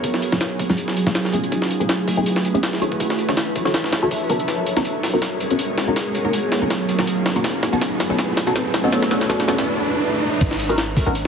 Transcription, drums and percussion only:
0.04 kick, open hi-hat
0.14 snare
0.22 open hi-hat
0.32 snare
0.41 snare, open hi-hat
0.59 kick, open hi-hat
0.69 snare
0.78 open hi-hat
0.88 snare
0.97 open hi-hat
1.07 snare
1.15 snare, open hi-hat
1.25 snare
1.33 open hi-hat
1.44 closed hi-hat
1.52 kick, open hi-hat
1.62 snare
1.71 open hi-hat
1.81 closed hi-hat
1.89 snare, open hi-hat
2.08 kick, open hi-hat
2.26 open hi-hat
2.36 snare
2.45 open hi-hat
2.55 closed hi-hat
2.63 snare, open hi-hat
2.73 snare
2.82 open hi-hat
2.92 kick
3.00 kick, open hi-hat
3.10 snare
3.19 open hi-hat
3.29 snare
3.37 snare, open hi-hat
3.56 kick, open hi-hat
3.66 snare
3.74 snare, open hi-hat
3.84 snare
3.93 snare, open hi-hat
4.11 kick, open hi-hat
4.30 open hi-hat
4.40 closed hi-hat
4.48 snare, open hi-hat
4.66 open hi-hat
4.77 snare, closed hi-hat
4.85 open hi-hat
5.03 snare, open hi-hat
5.22 snare, open hi-hat
5.40 open hi-hat
5.51 closed hi-hat
5.59 open hi-hat
5.78 snare, open hi-hat
5.96 snare, open hi-hat
6.15 open hi-hat
6.33 open hi-hat
6.52 snare, open hi-hat
6.70 snare, open hi-hat
6.89 open hi-hat
6.99 snare
7.07 open hi-hat
7.26 snare, open hi-hat
7.36 closed hi-hat
7.44 snare, open hi-hat
7.63 snare, open hi-hat
7.73 closed hi-hat
7.81 snare, open hi-hat
8.00 snare, open hi-hat
8.19 snare, open hi-hat
8.37 snare, open hi-hat
8.47 closed hi-hat
8.56 snare, open hi-hat
8.74 snare, open hi-hat
8.93 snare, open hi-hat
9.03 snare
9.11 snare, open hi-hat
9.21 snare
9.30 snare, open hi-hat
9.40 snare
9.48 snare, open hi-hat
9.58 snare, open hi-hat
10.41 kick, open hi-hat, crash
10.51 snare
10.60 open hi-hat
10.70 closed hi-hat
10.78 snare, open hi-hat
10.97 kick, open hi-hat
11.15 open hi-hat

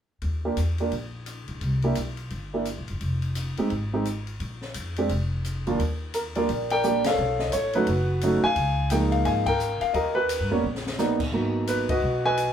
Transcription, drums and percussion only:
0.22 kick, ride
0.57 hi-hat pedal, ride
0.78 ride
0.92 kick, ride
1.26 hi-hat pedal, ride
1.48 ride
1.61 kick, ride
1.82 ride
1.95 hi-hat pedal, ride
2.17 ride
2.30 kick, ride
2.65 hi-hat pedal, ride
2.88 ride
3.01 kick, ride
3.22 ride
3.35 hi-hat pedal, ride
3.57 ride
3.70 kick, ride
4.05 hi-hat pedal, ride
4.27 ride
4.40 kick, ride
4.62 snare
4.74 hi-hat pedal, ride
4.96 ride
5.09 kick, ride
5.44 hi-hat pedal, ride
5.67 ride
5.79 kick, ride
6.14 hi-hat pedal, ride
6.35 ride
6.49 kick, ride
6.70 ride
6.83 hi-hat pedal
7.04 snare, ride
7.39 snare
7.52 hi-hat pedal, ride
7.73 ride
7.87 kick, ride
8.21 hi-hat pedal, ride
8.56 kick, ride
8.90 hi-hat pedal, ride
9.12 ride
9.25 kick, ride
9.46 kick, ride
9.59 hi-hat pedal
9.81 ride
9.94 kick, ride
10.29 hi-hat pedal, ride
10.75 snare
10.87 snare
10.98 snare, hi-hat pedal
11.20 kick, crash
11.33 kick
11.67 hi-hat pedal, ride
11.89 kick, ride
12.37 hi-hat pedal, ride

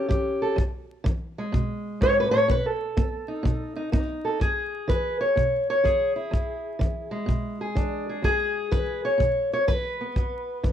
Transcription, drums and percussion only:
0.11 kick
0.58 kick
1.06 kick
1.54 kick
2.02 kick
2.50 kick
2.98 kick
3.45 kick
3.93 kick
4.41 kick
4.90 kick
5.37 kick
5.85 kick
6.34 kick
6.81 kick
7.29 kick
7.77 kick
8.24 kick
8.72 kick
9.20 kick
9.68 kick
10.16 kick
10.64 kick

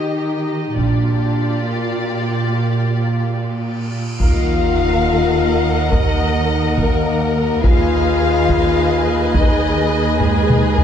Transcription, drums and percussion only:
0.78 taiko
4.20 taiko
5.92 taiko
6.78 taiko
7.64 taiko
8.49 taiko
9.35 taiko
10.20 taiko low-mid
10.50 taiko mid
10.78 taiko low

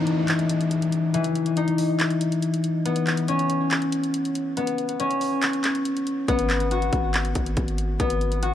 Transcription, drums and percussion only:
0.07 closed hi-hat
0.28 clap, closed hi-hat
0.39 closed hi-hat
0.49 closed hi-hat
0.61 closed hi-hat
0.71 closed hi-hat
0.82 closed hi-hat
0.92 closed hi-hat
1.14 closed hi-hat
1.24 closed hi-hat
1.35 closed hi-hat
1.46 closed hi-hat
1.57 closed hi-hat
1.68 closed hi-hat
1.78 open hi-hat
2.00 clap, closed hi-hat
2.10 closed hi-hat
2.21 closed hi-hat
2.32 closed hi-hat
2.42 closed hi-hat
2.54 closed hi-hat
2.64 closed hi-hat
2.86 closed hi-hat
2.96 closed hi-hat
3.07 clap, closed hi-hat
3.17 closed hi-hat
3.28 closed hi-hat
3.39 closed hi-hat
3.50 closed hi-hat
3.71 clap, closed hi-hat
3.82 closed hi-hat
3.92 closed hi-hat
4.04 closed hi-hat
4.14 closed hi-hat
4.25 closed hi-hat
4.35 closed hi-hat
4.57 closed hi-hat
4.67 closed hi-hat
4.78 closed hi-hat
4.89 closed hi-hat
5.00 closed hi-hat
5.11 closed hi-hat
5.21 open hi-hat
5.42 clap, closed hi-hat
5.53 closed hi-hat
5.64 clap, closed hi-hat
5.75 closed hi-hat
5.85 closed hi-hat
5.97 closed hi-hat
6.07 closed hi-hat
6.28 kick, closed hi-hat
6.39 closed hi-hat
6.50 clap, closed hi-hat
6.60 closed hi-hat
6.71 closed hi-hat
6.82 closed hi-hat
6.93 kick, closed hi-hat
7.14 clap, closed hi-hat
7.25 closed hi-hat
7.35 kick, closed hi-hat
7.46 closed hi-hat
7.57 kick, closed hi-hat
7.68 closed hi-hat
7.78 closed hi-hat
8.00 kick, closed hi-hat
8.10 closed hi-hat
8.21 closed hi-hat
8.32 closed hi-hat
8.43 closed hi-hat

